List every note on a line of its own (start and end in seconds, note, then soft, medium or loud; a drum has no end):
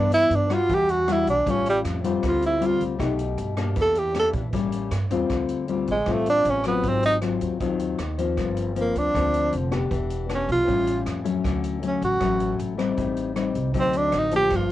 0.00 0.28 G2 medium
0.00 0.67 G2 medium
0.00 0.47 E3 medium
0.00 0.47 B3 medium
0.00 0.13 D4 medium
0.00 0.47 D4 medium
0.12 0.37 E4 loud
0.12 closed hi-hat soft
0.30 0.66 G2 medium
0.30 closed hi-hat soft
0.35 0.55 D4 medium
0.49 1.04 G3 medium
0.49 1.05 D4 medium
0.49 1.05 F#4 medium
0.49 cross-stick medium
0.49 closed hi-hat soft
0.54 0.76 F4 loud
0.69 1.23 E2 medium
0.69 1.45 E3 medium
0.69 kick medium
0.69 closed hi-hat medium
0.74 0.92 G4 loud
0.89 1.13 F#4 medium
0.89 closed hi-hat soft
1.08 1.32 G3 medium
1.08 1.33 D4 medium
1.08 1.33 F#4 medium
1.08 cross-stick medium
1.08 closed hi-hat soft
1.12 1.29 E4 medium
1.27 1.45 B1 medium
1.27 1.52 D4 medium
1.27 closed hi-hat soft
1.46 1.82 A1 medium
1.46 2.21 A2 medium
1.46 2.01 G3 medium
1.46 2.01 C#4 medium
1.46 2.01 F4 medium
1.46 kick medium
1.46 closed hi-hat medium
1.51 1.68 C#4 medium
1.66 1.80 G3 medium
1.66 closed hi-hat soft
1.85 2.20 F2 medium
1.85 cross-stick medium
1.85 closed hi-hat soft
2.04 2.58 G3 medium
2.04 2.59 C4 medium
2.04 2.59 F4 medium
2.04 closed hi-hat soft
2.23 2.77 D2 medium
2.23 2.98 D3 medium
2.23 kick medium
2.23 cross-stick medium
2.23 closed hi-hat medium
2.28 2.43 F4 medium
2.42 2.68 E4 medium
2.42 closed hi-hat soft
2.61 2.96 G3 medium
2.61 2.97 C4 medium
2.61 2.97 F4 medium
2.61 closed hi-hat soft
2.66 2.83 F4 medium
2.81 2.98 D2 medium
2.81 closed hi-hat soft
2.99 3.36 B1 medium
2.99 3.74 B2 medium
2.99 3.54 A3 medium
2.99 3.54 D#4 medium
2.99 3.54 G4 medium
2.99 kick medium
2.99 cross-stick medium
2.99 closed hi-hat medium
3.19 closed hi-hat soft
3.38 3.74 G2 medium
3.38 closed hi-hat soft
3.57 4.12 A#3 medium
3.57 4.12 D4 medium
3.57 4.12 G4 medium
3.57 cross-stick medium
3.57 closed hi-hat soft
3.76 4.30 E2 medium
3.76 4.51 E3 medium
3.76 kick medium
3.76 closed hi-hat medium
3.81 4.00 A4 medium
3.95 4.16 G4 medium
3.95 closed hi-hat soft
4.15 4.40 A#3 medium
4.15 4.40 D4 medium
4.15 4.40 G4 medium
4.15 cross-stick medium
4.15 closed hi-hat soft
4.19 4.30 A4 medium
4.33 4.52 A#2 medium
4.33 kick medium
4.33 closed hi-hat soft
4.53 4.89 A1 medium
4.53 5.28 A2 medium
4.53 4.92 G3 medium
4.53 4.92 A#3 medium
4.53 4.92 C#4 medium
4.53 kick medium
4.53 closed hi-hat medium
4.72 closed hi-hat soft
4.91 5.09 G2 medium
4.91 cross-stick medium
4.91 closed hi-hat soft
5.10 5.28 E2 medium
5.10 5.65 G3 medium
5.10 5.66 C4 medium
5.10 5.66 F4 medium
5.10 closed hi-hat soft
5.30 5.84 D2 medium
5.30 6.05 D3 soft
5.30 kick medium
5.30 cross-stick medium
5.30 closed hi-hat medium
5.49 closed hi-hat soft
5.68 5.93 G3 medium
5.68 5.94 C4 medium
5.68 5.94 F4 medium
5.68 closed hi-hat soft
5.87 6.06 A1 medium
5.87 6.14 G#3 medium
5.87 closed hi-hat soft
6.06 6.42 A1 medium
6.06 6.82 A2 medium
6.06 6.61 G3 medium
6.06 6.62 C4 medium
6.06 6.62 F4 medium
6.06 kick medium
6.06 cross-stick medium
6.06 closed hi-hat medium
6.12 6.29 A3 medium
6.26 6.52 D4 loud
6.26 closed hi-hat soft
6.45 6.81 A1 medium
6.45 closed hi-hat soft
6.50 6.67 C#4 medium
6.64 7.20 F#3 medium
6.64 6.90 B3 medium
6.64 7.20 C4 medium
6.64 7.20 F4 medium
6.64 cross-stick medium
6.64 closed hi-hat soft
6.83 7.37 G#1 medium
6.83 7.59 G#2 medium
6.83 kick medium
6.83 closed hi-hat medium
6.88 7.05 C4 medium
7.03 7.16 D#4 medium
7.03 closed hi-hat soft
7.22 7.57 F#3 medium
7.22 7.57 C4 medium
7.22 7.58 F4 medium
7.22 cross-stick medium
7.22 closed hi-hat soft
7.41 7.59 D#2 medium
7.41 closed hi-hat soft
7.60 7.96 D#2 medium
7.60 8.35 D#3 medium
7.60 7.99 F#3 medium
7.60 7.99 C4 medium
7.60 7.99 F4 medium
7.60 kick medium
7.60 closed hi-hat medium
7.79 closed hi-hat soft
7.98 8.35 D#2 medium
7.98 cross-stick medium
7.98 closed hi-hat soft
8.18 8.73 F3 medium
8.18 8.73 A#3 medium
8.18 8.73 C4 medium
8.18 closed hi-hat soft
8.37 8.91 G1 medium
8.37 9.12 G2 medium
8.37 kick medium
8.37 cross-stick medium
8.37 closed hi-hat medium
8.57 closed hi-hat soft
8.76 9.11 F3 medium
8.76 9.11 A#3 medium
8.76 9.11 C4 medium
8.76 closed hi-hat soft
8.81 9.00 A#3 medium
8.95 9.13 D2 medium
8.95 9.54 D4 loud
8.95 closed hi-hat soft
9.15 9.50 D2 medium
9.15 9.89 D3 medium
9.15 9.69 F3 medium
9.15 9.69 A#3 medium
9.15 9.69 C4 medium
9.15 kick medium
9.15 cross-stick medium
9.15 closed hi-hat medium
9.34 closed hi-hat soft
9.53 9.88 F1 medium
9.53 closed hi-hat soft
9.71 10.26 B3 medium
9.71 10.26 D4 medium
9.71 10.27 G4 medium
9.71 cross-stick medium
9.71 closed hi-hat soft
9.91 10.45 E1 medium
9.91 10.66 E3 medium
9.91 kick medium
9.91 closed hi-hat medium
10.10 closed hi-hat soft
10.29 10.65 B3 medium
10.29 10.65 D4 medium
10.29 10.65 G4 medium
10.29 cross-stick medium
10.29 closed hi-hat soft
10.34 10.50 C#4 medium
10.49 10.66 B1 medium
10.49 11.04 F4 medium
10.49 kick medium
10.49 closed hi-hat soft
10.67 11.03 A1 medium
10.67 11.42 A2 medium
10.67 11.22 G3 medium
10.67 11.22 C#4 medium
10.67 11.22 F4 medium
10.67 kick medium
10.67 closed hi-hat medium
10.87 closed hi-hat soft
11.06 11.42 F2 medium
11.06 cross-stick medium
11.06 closed hi-hat soft
11.24 11.79 F#3 medium
11.24 11.79 A3 medium
11.24 11.80 C#4 medium
11.24 closed hi-hat soft
11.44 11.98 D2 medium
11.44 12.19 D3 medium
11.44 kick medium
11.44 cross-stick medium
11.44 closed hi-hat medium
11.64 closed hi-hat soft
11.82 12.18 F#3 medium
11.82 12.18 A3 medium
11.82 12.18 C#4 medium
11.82 closed hi-hat soft
11.87 12.03 C#4 medium
12.02 12.20 A1 medium
12.02 12.57 F#4 medium
12.02 closed hi-hat soft
12.20 12.56 A1 medium
12.20 12.95 A2 medium
12.20 12.75 F#3 medium
12.20 12.75 A3 medium
12.20 12.76 C#4 medium
12.20 kick medium
12.20 cross-stick medium
12.20 closed hi-hat medium
12.40 closed hi-hat soft
12.59 12.95 A1 medium
12.59 closed hi-hat soft
12.78 13.33 G3 medium
12.78 13.33 C4 medium
12.78 13.33 D#4 medium
12.78 cross-stick medium
12.78 closed hi-hat soft
12.97 13.51 A1 medium
12.97 13.72 A2 medium
12.97 kick medium
12.97 closed hi-hat medium
13.17 closed hi-hat soft
13.35 13.71 G3 medium
13.35 13.71 C4 medium
13.35 13.72 D#4 medium
13.35 cross-stick medium
13.35 closed hi-hat soft
13.55 13.73 C2 medium
13.55 closed hi-hat soft
13.74 14.10 D2 medium
13.74 14.49 D3 medium
13.74 14.29 F#3 medium
13.74 14.29 C4 medium
13.74 14.29 D#4 medium
13.74 kick medium
13.74 closed hi-hat medium
13.80 13.98 C4 medium
13.93 14.20 D4 medium
13.93 closed hi-hat soft
14.12 14.48 A1 medium
14.12 cross-stick medium
14.12 closed hi-hat soft
14.18 14.35 D#4 medium
14.31 14.72 F3 medium
14.31 14.72 A#3 medium
14.31 14.72 D4 medium
14.31 closed hi-hat soft
14.36 14.57 G4 loud
14.50 14.72 G1 medium
14.50 14.72 G2 medium
14.50 kick medium
14.50 cross-stick medium
14.50 closed hi-hat medium
14.56 14.72 F4 medium